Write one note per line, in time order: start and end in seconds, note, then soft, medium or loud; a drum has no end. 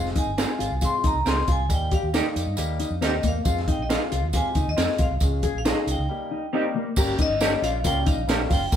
0.00 0.20 F1 medium
0.00 0.21 G#3 medium
0.00 0.21 C4 medium
0.00 0.21 F4 medium
0.00 0.21 G#4 medium
0.05 snare soft
0.15 0.31 D#4 medium
0.15 0.85 G#5 medium
0.15 kick medium
0.15 closed hi-hat medium
0.15 tambourine medium
0.27 0.44 G1 medium
0.37 0.65 G#3 medium
0.37 0.65 C4 medium
0.37 0.48 C4 medium
0.37 0.66 F4 medium
0.37 0.49 F4 medium
0.37 0.66 G#4 medium
0.37 0.49 G#4 medium
0.37 snare loud
0.37 closed hi-hat medium
0.37 tambourine medium
0.59 0.69 G#1 medium
0.59 0.74 F4 medium
0.59 closed hi-hat medium
0.59 tambourine medium
0.71 0.88 C2 medium
0.81 1.09 G#3 medium
0.81 1.09 C4 medium
0.81 0.97 F4 medium
0.81 1.10 F4 medium
0.81 1.10 G#4 medium
0.81 1.06 C6 medium
0.81 kick medium
0.81 closed hi-hat medium
0.81 tambourine medium
1.04 1.12 A#1 medium
1.04 1.19 D#4 medium
1.04 1.26 A#5 medium
1.04 kick medium
1.04 closed hi-hat medium
1.04 tambourine medium
1.14 1.23 C2 medium
1.25 1.43 C#2 medium
1.25 1.53 G#3 medium
1.25 1.53 C4 medium
1.25 1.36 C4 medium
1.25 1.53 F4 medium
1.25 1.36 F4 medium
1.25 1.53 G#4 medium
1.25 1.37 G#4 medium
1.25 1.50 C6 medium
1.25 snare medium
1.25 closed hi-hat medium
1.25 tambourine medium
1.38 snare soft
1.48 1.69 C2 medium
1.48 1.63 F4 medium
1.48 1.72 G#5 medium
1.48 kick medium
1.48 closed hi-hat medium
1.48 tambourine soft
1.69 1.95 D#2 medium
1.69 1.97 G3 medium
1.69 1.97 A#3 medium
1.69 1.97 D#4 medium
1.69 1.97 G4 medium
1.69 kick medium
1.69 closed hi-hat medium
1.69 tambourine medium
1.74 1.83 G5 medium
1.91 2.07 G4 medium
1.91 2.99 F5 medium
1.91 kick medium
1.91 closed hi-hat medium
1.91 tambourine medium
2.03 2.20 D#2 medium
2.13 2.41 G3 medium
2.13 2.41 A#3 medium
2.13 2.24 A#3 medium
2.13 2.55 D#4 medium
2.13 2.41 D#4 medium
2.13 2.24 D#4 medium
2.13 2.41 G4 medium
2.13 2.25 G4 medium
2.13 snare loud
2.13 closed hi-hat medium
2.13 tambourine medium
2.36 2.44 F2 medium
2.36 closed hi-hat medium
2.36 tambourine medium
2.47 2.55 G2 medium
2.57 2.83 D#2 medium
2.57 2.84 G3 medium
2.57 2.85 A#3 medium
2.57 2.85 D#4 medium
2.57 2.85 G4 medium
2.57 closed hi-hat medium
2.57 tambourine medium
2.80 2.95 D#4 medium
2.80 closed hi-hat medium
2.80 tambourine soft
2.90 3.03 F2 medium
3.01 3.19 D#2 medium
3.01 3.29 G3 medium
3.01 3.12 A#3 medium
3.01 3.29 A#3 medium
3.01 3.16 C4 medium
3.01 3.12 D#4 medium
3.01 3.29 D#4 medium
3.01 3.30 G4 medium
3.01 3.13 G4 medium
3.01 snare medium
3.01 closed hi-hat medium
3.01 tambourine medium
3.06 3.26 D#5 medium
3.23 3.40 E2 medium
3.23 3.39 A#3 medium
3.23 kick medium
3.23 closed hi-hat medium
3.23 tambourine medium
3.28 3.71 F5 medium
3.44 3.71 F2 loud
3.44 3.72 G#3 medium
3.44 3.72 C4 medium
3.44 3.60 F4 medium
3.44 3.73 F4 medium
3.44 3.73 G#4 medium
3.44 kick medium
3.44 closed hi-hat medium
3.44 tambourine medium
3.57 snare soft
3.68 3.83 D#4 medium
3.68 3.80 G5 medium
3.68 kick medium
3.68 closed hi-hat medium
3.68 tambourine soft
3.79 3.96 A#1 medium
3.79 3.87 D#5 medium
3.88 4.16 G#3 medium
3.88 4.17 C4 medium
3.88 4.00 C4 medium
3.88 4.17 F4 medium
3.88 4.00 F4 medium
3.88 4.17 G#4 medium
3.88 4.00 G#4 medium
3.88 snare medium
3.88 closed hi-hat medium
3.88 tambourine medium
3.93 4.33 F5 medium
4.12 4.24 C2 medium
4.12 4.26 F4 medium
4.12 closed hi-hat medium
4.12 tambourine medium
4.24 4.40 D#2 medium
4.33 4.61 G#3 medium
4.33 4.61 C4 medium
4.33 4.48 F4 medium
4.33 4.61 F4 medium
4.33 4.62 G4 medium
4.33 4.66 G#5 medium
4.33 kick medium
4.33 closed hi-hat medium
4.33 tambourine medium
4.55 4.64 C#2 medium
4.55 4.71 D#4 medium
4.55 kick medium
4.55 closed hi-hat medium
4.55 tambourine soft
4.67 4.75 D#2 medium
4.67 5.02 D#5 medium
4.77 4.86 F2 medium
4.77 5.04 G#3 medium
4.77 4.87 C4 medium
4.77 5.05 C4 medium
4.77 4.88 F4 medium
4.77 5.05 F4 medium
4.77 4.88 G#4 medium
4.77 5.05 G#4 medium
4.77 snare medium
4.77 closed hi-hat medium
4.77 tambourine medium
4.89 snare soft
4.98 5.08 B1 medium
4.98 5.14 F4 medium
4.98 kick medium
4.98 closed hi-hat medium
4.98 tambourine soft
5.03 5.57 F5 medium
5.11 5.19 C2 medium
5.20 5.46 C#2 medium
5.20 5.49 G#3 medium
5.20 5.49 C#4 medium
5.20 5.49 F4 medium
5.20 5.49 G#4 medium
5.20 kick medium
5.20 closed hi-hat medium
5.20 tambourine medium
5.43 5.58 G#4 medium
5.43 kick medium
5.43 closed hi-hat medium
5.43 tambourine medium
5.55 5.71 A#1 medium
5.55 5.90 F5 medium
5.65 5.92 G#3 medium
5.65 5.76 C#4 medium
5.65 5.93 C#4 medium
5.65 6.07 D#4 medium
5.65 5.76 F4 medium
5.65 5.93 F4 medium
5.65 5.76 G#4 medium
5.65 5.93 G#4 medium
5.65 snare loud
5.65 closed hi-hat medium
5.65 tambourine medium
5.87 5.96 C2 medium
5.87 6.73 G5 medium
5.87 closed hi-hat medium
5.87 tambourine medium
5.98 6.07 C#2 medium
6.09 6.36 G3 medium
6.09 6.37 A#3 medium
6.09 6.37 D#4 medium
6.09 6.37 G4 medium
6.31 6.46 D#4 medium
6.53 6.80 G3 medium
6.53 6.63 A#3 medium
6.53 6.81 A#3 medium
6.53 6.68 C4 medium
6.53 6.64 D#4 medium
6.53 6.81 D#4 medium
6.53 6.64 G4 medium
6.53 6.81 G4 medium
6.75 6.90 A#3 medium
6.96 7.13 G1 loud
6.96 7.24 G3 medium
6.96 7.24 A#3 medium
6.96 7.24 C#4 medium
6.96 7.12 G4 medium
6.96 7.25 G4 medium
6.96 7.25 A#4 loud
6.96 kick loud
6.96 crash medium
6.96 tambourine loud
7.19 7.34 D#4 medium
7.19 7.65 D#5 medium
7.19 kick medium
7.19 closed hi-hat medium
7.19 tambourine medium
7.30 7.55 G1 medium
7.41 7.68 G3 medium
7.41 7.68 A#3 medium
7.41 7.51 A#3 loud
7.41 7.51 C#4 medium
7.41 7.68 C#4 medium
7.41 7.68 G4 medium
7.41 7.52 G4 loud
7.41 7.69 C#5 medium
7.41 snare loud
7.41 closed hi-hat medium
7.41 tambourine medium
7.62 7.85 A#1 medium
7.62 7.78 F4 medium
7.62 7.74 F5 medium
7.62 closed hi-hat medium
7.62 tambourine medium
7.84 8.10 C#2 medium
7.84 8.11 G3 medium
7.84 8.12 A#3 medium
7.84 8.12 C#4 medium
7.84 7.99 F4 medium
7.84 8.12 G4 medium
7.84 8.12 A#4 medium
7.84 7.96 G5 loud
7.84 kick medium
7.84 closed hi-hat medium
7.84 tambourine medium
8.06 8.21 D#4 medium
8.06 8.52 F5 loud
8.06 kick loud
8.06 closed hi-hat medium
8.06 tambourine medium
8.18 8.26 A#1 medium
8.27 8.45 A#1 medium
8.27 8.55 G3 medium
8.27 8.55 A#3 medium
8.27 8.39 A#3 medium
8.27 8.56 C#4 medium
8.27 8.39 C#4 medium
8.27 8.56 G4 medium
8.27 8.39 G4 medium
8.27 8.56 A#4 medium
8.27 snare loud
8.27 closed hi-hat medium
8.27 tambourine medium
8.50 8.67 F#1 medium
8.50 8.64 F4 medium
8.50 8.76 G5 medium
8.50 kick medium
8.50 open hi-hat medium
8.50 tambourine medium
8.72 8.76 G1 loud
8.72 8.76 G3 medium
8.72 8.76 A#3 medium
8.72 8.76 C#4 medium
8.72 8.76 G4 medium
8.72 8.76 A#4 medium
8.72 kick loud
8.72 closed hi-hat medium
8.72 tambourine loud